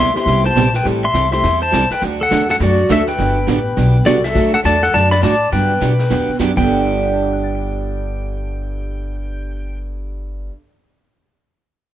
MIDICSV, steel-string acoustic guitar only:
0, 0, Header, 1, 2, 480
1, 0, Start_track
1, 0, Key_signature, 1, "major"
1, 0, Tempo, 291687
1, 1400, Time_signature, 4, 2, 24, 8
1, 19635, End_track
2, 0, Start_track
2, 0, Title_t, "Steel-string acoustic guitar"
2, 0, Program_c, 0, 25
2, 453, Note_on_c, 0, 48, 55
2, 453, Note_on_c, 0, 55, 60
2, 453, Note_on_c, 0, 59, 55
2, 464, Note_on_c, 0, 67, 64
2, 466, Note_on_c, 0, 64, 56
2, 768, Note_off_c, 0, 48, 0
2, 768, Note_off_c, 0, 55, 0
2, 768, Note_off_c, 0, 59, 0
2, 773, Note_off_c, 0, 67, 0
2, 774, Note_off_c, 0, 64, 0
2, 926, Note_on_c, 0, 48, 89
2, 931, Note_on_c, 0, 59, 85
2, 932, Note_on_c, 0, 55, 82
2, 940, Note_on_c, 0, 64, 99
2, 941, Note_on_c, 0, 67, 92
2, 1102, Note_off_c, 0, 48, 0
2, 1105, Note_off_c, 0, 55, 0
2, 1105, Note_off_c, 0, 59, 0
2, 1109, Note_off_c, 0, 64, 0
2, 1109, Note_off_c, 0, 67, 0
2, 1393, Note_on_c, 0, 52, 56
2, 1400, Note_on_c, 0, 55, 55
2, 1406, Note_on_c, 0, 60, 50
2, 1411, Note_on_c, 0, 64, 66
2, 1415, Note_on_c, 0, 69, 61
2, 1718, Note_off_c, 0, 52, 0
2, 1721, Note_off_c, 0, 55, 0
2, 1725, Note_off_c, 0, 60, 0
2, 1727, Note_off_c, 0, 64, 0
2, 1729, Note_off_c, 0, 69, 0
2, 1873, Note_on_c, 0, 52, 64
2, 1882, Note_on_c, 0, 55, 75
2, 1884, Note_on_c, 0, 60, 65
2, 1886, Note_on_c, 0, 64, 69
2, 1894, Note_on_c, 0, 69, 88
2, 2055, Note_off_c, 0, 52, 0
2, 2060, Note_off_c, 0, 55, 0
2, 2061, Note_off_c, 0, 60, 0
2, 2062, Note_off_c, 0, 64, 0
2, 2066, Note_off_c, 0, 69, 0
2, 2350, Note_on_c, 0, 52, 58
2, 2354, Note_on_c, 0, 55, 58
2, 2355, Note_on_c, 0, 60, 59
2, 2361, Note_on_c, 0, 64, 68
2, 2368, Note_on_c, 0, 69, 68
2, 2677, Note_off_c, 0, 52, 0
2, 2679, Note_off_c, 0, 55, 0
2, 2679, Note_off_c, 0, 60, 0
2, 2682, Note_off_c, 0, 64, 0
2, 2686, Note_off_c, 0, 69, 0
2, 2819, Note_on_c, 0, 52, 90
2, 2828, Note_on_c, 0, 55, 95
2, 2831, Note_on_c, 0, 60, 84
2, 2836, Note_on_c, 0, 64, 104
2, 2843, Note_on_c, 0, 69, 92
2, 3009, Note_off_c, 0, 52, 0
2, 3013, Note_off_c, 0, 55, 0
2, 3015, Note_off_c, 0, 60, 0
2, 3018, Note_off_c, 0, 64, 0
2, 3021, Note_off_c, 0, 69, 0
2, 3314, Note_on_c, 0, 54, 60
2, 3316, Note_on_c, 0, 50, 65
2, 3324, Note_on_c, 0, 57, 53
2, 3325, Note_on_c, 0, 62, 63
2, 3331, Note_on_c, 0, 66, 59
2, 3639, Note_off_c, 0, 54, 0
2, 3640, Note_off_c, 0, 50, 0
2, 3644, Note_off_c, 0, 57, 0
2, 3645, Note_off_c, 0, 62, 0
2, 3647, Note_off_c, 0, 66, 0
2, 3791, Note_on_c, 0, 50, 73
2, 3795, Note_on_c, 0, 54, 75
2, 3804, Note_on_c, 0, 57, 83
2, 3808, Note_on_c, 0, 62, 78
2, 3811, Note_on_c, 0, 66, 74
2, 3975, Note_off_c, 0, 50, 0
2, 3977, Note_off_c, 0, 54, 0
2, 3982, Note_off_c, 0, 57, 0
2, 3984, Note_off_c, 0, 62, 0
2, 3985, Note_off_c, 0, 66, 0
2, 4276, Note_on_c, 0, 54, 58
2, 4278, Note_on_c, 0, 50, 50
2, 4284, Note_on_c, 0, 57, 64
2, 4294, Note_on_c, 0, 62, 63
2, 4296, Note_on_c, 0, 66, 63
2, 4600, Note_off_c, 0, 54, 0
2, 4602, Note_off_c, 0, 50, 0
2, 4604, Note_off_c, 0, 57, 0
2, 4609, Note_off_c, 0, 62, 0
2, 4611, Note_off_c, 0, 66, 0
2, 4753, Note_on_c, 0, 54, 88
2, 4754, Note_on_c, 0, 50, 77
2, 4762, Note_on_c, 0, 57, 82
2, 4766, Note_on_c, 0, 62, 89
2, 4768, Note_on_c, 0, 66, 98
2, 4936, Note_off_c, 0, 54, 0
2, 4937, Note_off_c, 0, 50, 0
2, 4941, Note_off_c, 0, 57, 0
2, 4943, Note_off_c, 0, 62, 0
2, 4944, Note_off_c, 0, 66, 0
2, 5227, Note_on_c, 0, 54, 51
2, 5228, Note_on_c, 0, 50, 45
2, 5234, Note_on_c, 0, 59, 58
2, 5239, Note_on_c, 0, 62, 60
2, 5243, Note_on_c, 0, 67, 54
2, 5556, Note_off_c, 0, 54, 0
2, 5557, Note_off_c, 0, 50, 0
2, 5560, Note_off_c, 0, 59, 0
2, 5562, Note_off_c, 0, 62, 0
2, 5564, Note_off_c, 0, 67, 0
2, 5701, Note_on_c, 0, 50, 74
2, 5709, Note_on_c, 0, 54, 72
2, 5714, Note_on_c, 0, 59, 74
2, 5719, Note_on_c, 0, 67, 77
2, 5724, Note_on_c, 0, 62, 75
2, 5891, Note_off_c, 0, 50, 0
2, 5895, Note_off_c, 0, 54, 0
2, 5897, Note_off_c, 0, 59, 0
2, 5900, Note_off_c, 0, 67, 0
2, 5902, Note_off_c, 0, 62, 0
2, 6193, Note_on_c, 0, 50, 55
2, 6202, Note_on_c, 0, 59, 51
2, 6203, Note_on_c, 0, 54, 58
2, 6210, Note_on_c, 0, 62, 58
2, 6211, Note_on_c, 0, 67, 66
2, 6519, Note_off_c, 0, 50, 0
2, 6524, Note_off_c, 0, 59, 0
2, 6525, Note_off_c, 0, 54, 0
2, 6528, Note_off_c, 0, 62, 0
2, 6529, Note_off_c, 0, 67, 0
2, 6677, Note_on_c, 0, 50, 80
2, 6683, Note_on_c, 0, 54, 78
2, 6685, Note_on_c, 0, 59, 85
2, 6694, Note_on_c, 0, 62, 85
2, 6695, Note_on_c, 0, 67, 86
2, 6859, Note_off_c, 0, 50, 0
2, 6862, Note_off_c, 0, 54, 0
2, 6863, Note_off_c, 0, 59, 0
2, 6867, Note_off_c, 0, 62, 0
2, 6868, Note_off_c, 0, 67, 0
2, 7156, Note_on_c, 0, 50, 59
2, 7165, Note_on_c, 0, 54, 54
2, 7168, Note_on_c, 0, 57, 52
2, 7169, Note_on_c, 0, 62, 51
2, 7173, Note_on_c, 0, 66, 58
2, 7481, Note_off_c, 0, 50, 0
2, 7486, Note_off_c, 0, 54, 0
2, 7487, Note_off_c, 0, 57, 0
2, 7488, Note_off_c, 0, 62, 0
2, 7490, Note_off_c, 0, 66, 0
2, 7624, Note_on_c, 0, 50, 66
2, 7635, Note_on_c, 0, 57, 72
2, 7637, Note_on_c, 0, 54, 73
2, 7641, Note_on_c, 0, 62, 79
2, 7645, Note_on_c, 0, 66, 69
2, 7813, Note_off_c, 0, 50, 0
2, 7818, Note_off_c, 0, 57, 0
2, 7819, Note_off_c, 0, 54, 0
2, 7821, Note_off_c, 0, 62, 0
2, 7823, Note_off_c, 0, 66, 0
2, 8112, Note_on_c, 0, 50, 57
2, 8120, Note_on_c, 0, 54, 60
2, 8123, Note_on_c, 0, 57, 54
2, 8130, Note_on_c, 0, 62, 65
2, 8135, Note_on_c, 0, 66, 72
2, 8439, Note_off_c, 0, 50, 0
2, 8444, Note_off_c, 0, 54, 0
2, 8445, Note_off_c, 0, 57, 0
2, 8449, Note_off_c, 0, 62, 0
2, 8451, Note_off_c, 0, 66, 0
2, 8586, Note_on_c, 0, 50, 79
2, 8589, Note_on_c, 0, 54, 93
2, 8597, Note_on_c, 0, 57, 93
2, 8604, Note_on_c, 0, 62, 96
2, 8606, Note_on_c, 0, 66, 86
2, 8774, Note_off_c, 0, 50, 0
2, 8775, Note_off_c, 0, 54, 0
2, 8780, Note_off_c, 0, 57, 0
2, 8783, Note_off_c, 0, 62, 0
2, 8784, Note_off_c, 0, 66, 0
2, 9086, Note_on_c, 0, 50, 55
2, 9090, Note_on_c, 0, 54, 56
2, 9096, Note_on_c, 0, 67, 54
2, 9097, Note_on_c, 0, 59, 48
2, 9097, Note_on_c, 0, 62, 61
2, 9406, Note_off_c, 0, 50, 0
2, 9408, Note_off_c, 0, 54, 0
2, 9411, Note_off_c, 0, 67, 0
2, 9412, Note_off_c, 0, 59, 0
2, 9412, Note_off_c, 0, 62, 0
2, 9552, Note_on_c, 0, 50, 74
2, 9554, Note_on_c, 0, 54, 79
2, 9563, Note_on_c, 0, 59, 77
2, 9567, Note_on_c, 0, 62, 67
2, 9570, Note_on_c, 0, 67, 76
2, 9737, Note_off_c, 0, 50, 0
2, 9738, Note_off_c, 0, 54, 0
2, 9743, Note_off_c, 0, 59, 0
2, 9744, Note_off_c, 0, 62, 0
2, 9746, Note_off_c, 0, 67, 0
2, 10024, Note_on_c, 0, 50, 58
2, 10032, Note_on_c, 0, 54, 59
2, 10035, Note_on_c, 0, 59, 67
2, 10041, Note_on_c, 0, 62, 59
2, 10042, Note_on_c, 0, 67, 65
2, 10356, Note_off_c, 0, 50, 0
2, 10359, Note_off_c, 0, 54, 0
2, 10361, Note_off_c, 0, 59, 0
2, 10364, Note_off_c, 0, 62, 0
2, 10364, Note_off_c, 0, 67, 0
2, 10515, Note_on_c, 0, 50, 76
2, 10520, Note_on_c, 0, 54, 83
2, 10526, Note_on_c, 0, 59, 84
2, 10529, Note_on_c, 0, 62, 89
2, 10533, Note_on_c, 0, 67, 94
2, 10699, Note_off_c, 0, 50, 0
2, 10701, Note_off_c, 0, 54, 0
2, 10704, Note_off_c, 0, 59, 0
2, 10706, Note_off_c, 0, 62, 0
2, 10707, Note_off_c, 0, 67, 0
2, 10803, Note_on_c, 0, 43, 74
2, 10808, Note_on_c, 0, 50, 75
2, 10825, Note_on_c, 0, 59, 74
2, 10839, Note_on_c, 0, 62, 82
2, 10850, Note_on_c, 0, 67, 78
2, 17306, Note_off_c, 0, 43, 0
2, 17309, Note_off_c, 0, 50, 0
2, 17317, Note_off_c, 0, 59, 0
2, 17324, Note_off_c, 0, 62, 0
2, 17330, Note_off_c, 0, 67, 0
2, 19635, End_track
0, 0, End_of_file